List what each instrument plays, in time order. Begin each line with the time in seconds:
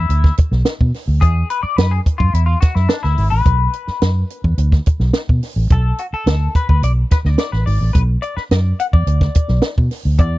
Already playing: clean electric guitar E4
0.09 fingered electric bass D2, closed hi-hat
0.24 kick, snare
0.37 kick, closed hi-hat
0.51 fingered electric bass B1, snare
0.65 snare, closed hi-hat
0.81 fingered electric bass B2, kick
0.94 snare, open hi-hat
1.08 fingered electric bass D2
1.21 fingered electric bass E2, clean electric guitar G#4, kick, closed hi-hat
1.50 clean electric guitar B4, closed hi-hat
1.63 clean electric guitar D5, muted fingered electric bass stroke
1.77 fingered electric bass F#2, clean electric guitar B4, snare, closed hi-hat
1.91 clean electric guitar G#4
2.06 kick, closed hi-hat
2.18 fingered electric bass F#2, clean electric guitar F4, kick
2.33 fingered electric bass E2, clean electric guitar E4, closed hi-hat
2.46 clean electric guitar F4
2.61 clean electric guitar F#4, kick, snare, closed hi-hat
2.75 fingered electric bass F#2, clean electric guitar E4, snare
2.89 clean electric guitar D4, snare, closed hi-hat
3.03 fingered electric bass D2, clean electric guitar E4, snare
3.18 fingered electric bass G#1, open hi-hat
3.30 fingered electric bass A1, clean electric guitar B4
3.46 fingered electric bass B1, kick, closed hi-hat
3.73 closed hi-hat
3.87 muted fingered electric bass stroke, snare
4.02 fingered electric bass F#2, snare, closed hi-hat
4.30 closed hi-hat
4.44 fingered electric bass E2, kick
4.58 fingered electric bass D2, closed hi-hat
4.72 kick, snare
4.86 kick, closed hi-hat
5.00 fingered electric bass B1, snare
5.13 snare, closed hi-hat
5.29 fingered electric bass B2, kick
5.43 snare, open hi-hat
5.56 fingered electric bass A1
5.70 fingered electric bass B1, clean electric guitar A4, kick, closed hi-hat
5.98 clean electric guitar F#4, closed hi-hat
6.13 clean electric guitar A4, muted fingered electric bass stroke
6.26 fingered electric bass D2, snare, closed hi-hat
6.55 clean electric guitar B4, kick, closed hi-hat
6.69 fingered electric bass D2, clean electric guitar B4, kick
6.82 fingered electric bass B1, clean electric guitar D5, closed hi-hat
7.11 clean electric guitar B4, kick, snare, closed hi-hat
7.25 fingered electric bass D2, clean electric guitar D5, snare
7.38 clean electric guitar D5, snare, closed hi-hat
7.52 fingered electric bass A1, clean electric guitar B4, snare
7.66 fingered electric bass G#1, clean electric guitar D5, open hi-hat
7.81 fingered electric bass A1
7.93 fingered electric bass B1, clean electric guitar B4, kick, closed hi-hat
8.22 clean electric guitar D5, closed hi-hat
8.37 clean electric guitar B4, muted fingered electric bass stroke, snare
8.51 fingered electric bass F#2, clean electric guitar D5, snare, closed hi-hat
8.80 clean electric guitar F#5, closed hi-hat
8.93 fingered electric bass E2, clean electric guitar D5, kick
9.07 fingered electric bass D2, closed hi-hat
9.21 kick, snare
9.35 kick, closed hi-hat
9.48 fingered electric bass B1, snare
9.62 snare, closed hi-hat
9.78 fingered electric bass B2, kick
9.91 snare, open hi-hat
10.05 fingered electric bass D2
10.18 fingered electric bass E2, clean electric guitar D5, kick, closed hi-hat